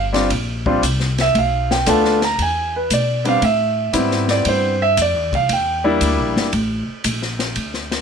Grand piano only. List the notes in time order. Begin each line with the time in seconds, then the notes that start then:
0.13 G3 C4 D4 F4
0.66 G3 C4 D4 F4
1.21 E5
1.39 F5
1.71 G5
1.86 A3 B3 D4 F4 A5
2.24 A#5
2.42 G#5
2.76 B4
2.94 D5
3.24 G3 B3 C4 D4
3.29 F5
3.44 E5
3.93 G3 B3 C4 E4
4.31 D5
4.49 C5
4.82 E5
5.02 D5
5.35 F5
5.53 G5
5.84 G3 A#3 D4 E4